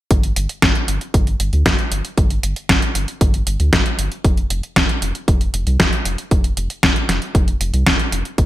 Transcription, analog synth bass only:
0, 0, Header, 1, 2, 480
1, 0, Start_track
1, 0, Tempo, 517241
1, 99, Time_signature, 4, 2, 24, 8
1, 7849, End_track
2, 0, Start_track
2, 0, Title_t, "Analog synth bass"
2, 0, Program_c, 0, 38
2, 98, Note_on_c, 0, 31, 97
2, 297, Note_off_c, 0, 31, 0
2, 338, Note_on_c, 0, 31, 86
2, 438, Note_off_c, 0, 31, 0
2, 579, Note_on_c, 0, 31, 102
2, 678, Note_off_c, 0, 31, 0
2, 817, Note_on_c, 0, 31, 81
2, 917, Note_off_c, 0, 31, 0
2, 1059, Note_on_c, 0, 31, 98
2, 1257, Note_off_c, 0, 31, 0
2, 1298, Note_on_c, 0, 31, 102
2, 1397, Note_off_c, 0, 31, 0
2, 1418, Note_on_c, 0, 38, 100
2, 1517, Note_off_c, 0, 38, 0
2, 1539, Note_on_c, 0, 31, 106
2, 1638, Note_off_c, 0, 31, 0
2, 1778, Note_on_c, 0, 31, 77
2, 1877, Note_off_c, 0, 31, 0
2, 2019, Note_on_c, 0, 31, 93
2, 2217, Note_off_c, 0, 31, 0
2, 2258, Note_on_c, 0, 31, 81
2, 2357, Note_off_c, 0, 31, 0
2, 2499, Note_on_c, 0, 31, 105
2, 2598, Note_off_c, 0, 31, 0
2, 2738, Note_on_c, 0, 31, 76
2, 2837, Note_off_c, 0, 31, 0
2, 2979, Note_on_c, 0, 31, 99
2, 3177, Note_off_c, 0, 31, 0
2, 3219, Note_on_c, 0, 31, 101
2, 3318, Note_off_c, 0, 31, 0
2, 3338, Note_on_c, 0, 38, 104
2, 3438, Note_off_c, 0, 38, 0
2, 3459, Note_on_c, 0, 31, 103
2, 3558, Note_off_c, 0, 31, 0
2, 3698, Note_on_c, 0, 31, 82
2, 3798, Note_off_c, 0, 31, 0
2, 3940, Note_on_c, 0, 29, 97
2, 4137, Note_off_c, 0, 29, 0
2, 4179, Note_on_c, 0, 29, 89
2, 4278, Note_off_c, 0, 29, 0
2, 4419, Note_on_c, 0, 29, 104
2, 4518, Note_off_c, 0, 29, 0
2, 4659, Note_on_c, 0, 29, 81
2, 4758, Note_off_c, 0, 29, 0
2, 4899, Note_on_c, 0, 29, 106
2, 5097, Note_off_c, 0, 29, 0
2, 5138, Note_on_c, 0, 29, 99
2, 5237, Note_off_c, 0, 29, 0
2, 5258, Note_on_c, 0, 36, 103
2, 5358, Note_off_c, 0, 36, 0
2, 5379, Note_on_c, 0, 29, 103
2, 5478, Note_off_c, 0, 29, 0
2, 5619, Note_on_c, 0, 29, 78
2, 5718, Note_off_c, 0, 29, 0
2, 5859, Note_on_c, 0, 29, 99
2, 6057, Note_off_c, 0, 29, 0
2, 6099, Note_on_c, 0, 29, 88
2, 6198, Note_off_c, 0, 29, 0
2, 6339, Note_on_c, 0, 29, 105
2, 6438, Note_off_c, 0, 29, 0
2, 6577, Note_on_c, 0, 29, 77
2, 6677, Note_off_c, 0, 29, 0
2, 6818, Note_on_c, 0, 29, 100
2, 7017, Note_off_c, 0, 29, 0
2, 7057, Note_on_c, 0, 29, 102
2, 7157, Note_off_c, 0, 29, 0
2, 7178, Note_on_c, 0, 36, 101
2, 7277, Note_off_c, 0, 36, 0
2, 7298, Note_on_c, 0, 29, 99
2, 7398, Note_off_c, 0, 29, 0
2, 7538, Note_on_c, 0, 29, 79
2, 7638, Note_off_c, 0, 29, 0
2, 7778, Note_on_c, 0, 31, 96
2, 7849, Note_off_c, 0, 31, 0
2, 7849, End_track
0, 0, End_of_file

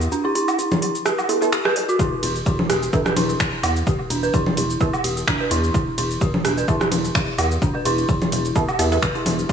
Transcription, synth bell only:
0, 0, Header, 1, 2, 480
1, 0, Start_track
1, 0, Key_signature, 1, "minor"
1, 0, Tempo, 468750
1, 122, Time_signature, 4, 2, 24, 8
1, 9754, End_track
2, 0, Start_track
2, 0, Title_t, "Synth bell"
2, 0, Program_c, 0, 98
2, 122, Note_on_c, 0, 62, 83
2, 187, Note_off_c, 0, 62, 0
2, 253, Note_on_c, 0, 64, 104
2, 289, Note_off_c, 0, 64, 0
2, 361, Note_on_c, 0, 64, 107
2, 427, Note_off_c, 0, 64, 0
2, 601, Note_on_c, 0, 64, 78
2, 628, Note_off_c, 0, 64, 0
2, 841, Note_on_c, 0, 64, 77
2, 885, Note_off_c, 0, 64, 0
2, 1080, Note_on_c, 0, 67, 83
2, 1107, Note_off_c, 0, 67, 0
2, 1322, Note_on_c, 0, 64, 74
2, 1348, Note_off_c, 0, 64, 0
2, 1561, Note_on_c, 0, 67, 84
2, 1588, Note_off_c, 0, 67, 0
2, 1694, Note_on_c, 0, 71, 99
2, 1748, Note_off_c, 0, 71, 0
2, 1802, Note_on_c, 0, 71, 75
2, 1846, Note_off_c, 0, 71, 0
2, 1934, Note_on_c, 0, 66, 103
2, 1988, Note_off_c, 0, 66, 0
2, 2042, Note_on_c, 0, 64, 94
2, 2107, Note_off_c, 0, 64, 0
2, 2281, Note_on_c, 0, 64, 77
2, 2308, Note_off_c, 0, 64, 0
2, 2521, Note_on_c, 0, 64, 81
2, 2565, Note_off_c, 0, 64, 0
2, 2761, Note_on_c, 0, 67, 81
2, 2788, Note_off_c, 0, 67, 0
2, 3000, Note_on_c, 0, 62, 86
2, 3067, Note_off_c, 0, 62, 0
2, 3131, Note_on_c, 0, 71, 77
2, 3169, Note_off_c, 0, 71, 0
2, 3239, Note_on_c, 0, 64, 104
2, 3306, Note_off_c, 0, 64, 0
2, 3481, Note_on_c, 0, 64, 81
2, 3508, Note_off_c, 0, 64, 0
2, 3720, Note_on_c, 0, 64, 73
2, 3765, Note_off_c, 0, 64, 0
2, 3961, Note_on_c, 0, 67, 80
2, 3988, Note_off_c, 0, 67, 0
2, 4201, Note_on_c, 0, 62, 80
2, 4267, Note_off_c, 0, 62, 0
2, 4332, Note_on_c, 0, 71, 79
2, 4369, Note_off_c, 0, 71, 0
2, 4441, Note_on_c, 0, 64, 99
2, 4507, Note_off_c, 0, 64, 0
2, 4681, Note_on_c, 0, 64, 79
2, 4708, Note_off_c, 0, 64, 0
2, 4922, Note_on_c, 0, 64, 84
2, 4966, Note_off_c, 0, 64, 0
2, 5162, Note_on_c, 0, 67, 75
2, 5188, Note_off_c, 0, 67, 0
2, 5402, Note_on_c, 0, 62, 82
2, 5468, Note_off_c, 0, 62, 0
2, 5534, Note_on_c, 0, 71, 77
2, 5570, Note_off_c, 0, 71, 0
2, 5642, Note_on_c, 0, 64, 104
2, 5707, Note_off_c, 0, 64, 0
2, 5883, Note_on_c, 0, 64, 79
2, 5909, Note_off_c, 0, 64, 0
2, 6123, Note_on_c, 0, 64, 83
2, 6166, Note_off_c, 0, 64, 0
2, 6363, Note_on_c, 0, 67, 84
2, 6389, Note_off_c, 0, 67, 0
2, 6602, Note_on_c, 0, 62, 80
2, 6667, Note_off_c, 0, 62, 0
2, 6734, Note_on_c, 0, 71, 75
2, 6770, Note_off_c, 0, 71, 0
2, 6842, Note_on_c, 0, 64, 104
2, 6907, Note_off_c, 0, 64, 0
2, 7081, Note_on_c, 0, 64, 76
2, 7108, Note_off_c, 0, 64, 0
2, 7322, Note_on_c, 0, 64, 84
2, 7366, Note_off_c, 0, 64, 0
2, 7562, Note_on_c, 0, 67, 76
2, 7588, Note_off_c, 0, 67, 0
2, 7803, Note_on_c, 0, 62, 82
2, 7868, Note_off_c, 0, 62, 0
2, 7934, Note_on_c, 0, 71, 79
2, 7970, Note_off_c, 0, 71, 0
2, 8042, Note_on_c, 0, 64, 111
2, 8108, Note_off_c, 0, 64, 0
2, 8282, Note_on_c, 0, 64, 84
2, 8308, Note_off_c, 0, 64, 0
2, 8522, Note_on_c, 0, 64, 76
2, 8566, Note_off_c, 0, 64, 0
2, 8762, Note_on_c, 0, 67, 87
2, 8788, Note_off_c, 0, 67, 0
2, 9002, Note_on_c, 0, 67, 77
2, 9046, Note_off_c, 0, 67, 0
2, 9241, Note_on_c, 0, 71, 86
2, 9285, Note_off_c, 0, 71, 0
2, 9374, Note_on_c, 0, 64, 75
2, 9428, Note_off_c, 0, 64, 0
2, 9482, Note_on_c, 0, 64, 72
2, 9526, Note_off_c, 0, 64, 0
2, 9722, Note_on_c, 0, 64, 102
2, 9754, Note_off_c, 0, 64, 0
2, 9754, End_track
0, 0, End_of_file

